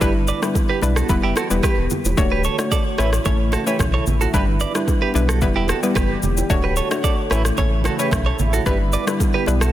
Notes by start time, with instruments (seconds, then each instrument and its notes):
Already playing: analog synth pad E4
0.01 sub bass G1, analog synth pad D3 G3 B3, synth pluck G3 D4 E4 B4, clean electric guitar G4 B4, kick, low conga, shaker
0.28 clean electric guitar B4 D5, shaker
0.42 synth pluck G3 D4 E4 B4, cross-stick, low bongo, shaker
0.55 kick, high bongo, shaker
0.69 clean electric guitar G4 B4
0.81 sub bass B1, synth pluck G3 D4 E4 B4, high bongo, shaker
0.96 clean electric guitar F#4 A4, cross-stick, shaker
1.09 sub bass E1, analog synth pad E3 G4, synth pluck G3 B3 E4 B4, kick, high bongo, low conga, shaker
1.23 sub bass F#1, clean electric guitar E4 G4
1.36 clean electric guitar F#4 A4, cross-stick, low bongo, shaker
1.50 sub bass E1, synth pluck G3 B3 E4 B4, shaker
1.63 clean electric guitar G4 B4, kick, cross-stick, high bongo, shaker
1.78 sub bass E1
1.90 low bongo, low conga, shaker
2.05 sub bass E1, low bongo, shaker
2.17 sub bass D1, analog synth pad D3 A3 F#4 C#5, synth pluck A3 D4 F#4 C#5, kick, low conga, shaker
2.32 clean electric guitar G4 B4
2.44 clean electric guitar A4 C#5, shaker
2.58 synth pluck A3 D4 F#4 C#5, cross-stick, low bongo, shaker
2.72 clean electric guitar A4 D5, kick, high bongo, shaker
2.98 sub bass A1, analog synth pad C#3 E3 E4, synth pluck A3 C#4 E4 C#5, clean electric guitar E4 B4, cross-stick, high bongo, shaker
3.13 cross-stick, shaker
3.25 sub bass A1, synth pluck A3 C#4 E4 C#5, clean electric guitar A4 C#5, kick, high bongo, low conga, shaker
3.52 clean electric guitar F#4 A4, cross-stick, low bongo, shaker
3.67 synth pluck A3 C#4 E4 C#5, clean electric guitar G4 B4, shaker
3.79 sub bass B1, kick, cross-stick, high bongo, shaker
3.94 clean electric guitar A4 C#5
4.06 sub bass A1, low conga, shaker
4.21 clean electric guitar F#4 A4, low bongo, shaker
4.34 sub bass G1, analog synth pad D3 G3 B3, synth pluck G3 D4 E4 B4, clean electric guitar G4 B4, kick, low conga, shaker
4.60 clean electric guitar B4 D5, shaker
4.75 synth pluck G3 D4 E4 B4, cross-stick, low bongo, shaker
4.88 kick, high bongo, shaker
5.02 clean electric guitar G4 B4
5.14 sub bass B1, synth pluck G3 D4 E4 B4, high bongo, shaker
5.29 clean electric guitar F#4 A4, cross-stick, shaker
5.41 sub bass E1, analog synth pad E3 G3 G4, synth pluck G3 B3 E4 B4, kick, high bongo, low conga, shaker
5.56 clean electric guitar E4 G4
5.68 clean electric guitar F#4 A4, cross-stick, low bongo, shaker
5.83 synth pluck G3 B3 E4 B4, shaker
5.95 sub bass F#1, clean electric guitar G4 B4, kick, cross-stick, high bongo, shaker
6.23 sub bass E1, low conga, shaker
6.37 low bongo, shaker
6.50 sub bass D1, analog synth pad D3 A3 F#4 C#5, synth pluck A3 D4 F#4 C#5, kick, low conga, shaker
6.64 clean electric guitar G4 B4
6.76 clean electric guitar A4 C#5, shaker
6.91 synth pluck A3 D4 F#4 C#5, cross-stick, low bongo, shaker
7.04 clean electric guitar A4 D5, kick, high bongo, shaker
7.30 sub bass A1, analog synth pad C#3 E3 E4, synth pluck A3 C#4 E4 C#5, clean electric guitar E4 B4, cross-stick, high bongo, shaker
7.45 cross-stick, shaker
7.58 sub bass A1, synth pluck A3 C#4 E4 C#5, clean electric guitar A4 C#5, kick, high bongo, low conga, shaker
7.84 clean electric guitar F#4 A4, cross-stick, low bongo, shaker
7.99 synth pluck A3 C#4 E4 C#5, clean electric guitar G4 B4, shaker
8.11 sub bass B1, kick, cross-stick, high bongo, shaker
8.26 clean electric guitar A4 C#5
8.39 sub bass A1, low conga, shaker
8.53 clean electric guitar F#4 A4, low bongo, shaker
8.66 sub bass G1, analog synth pad D3 G3 B3, synth pluck G3 D4 E4 B4, clean electric guitar G4 B4, kick, low conga, shaker
8.93 clean electric guitar B4 D5, shaker
9.07 synth pluck G3 D4 E4 B4, cross-stick, low bongo, shaker
9.20 kick, high bongo, shaker
9.34 clean electric guitar G4 B4
9.46 sub bass B1, synth pluck G3 D4 E4 B4, high bongo, shaker
9.61 clean electric guitar F#4 A4, cross-stick, shaker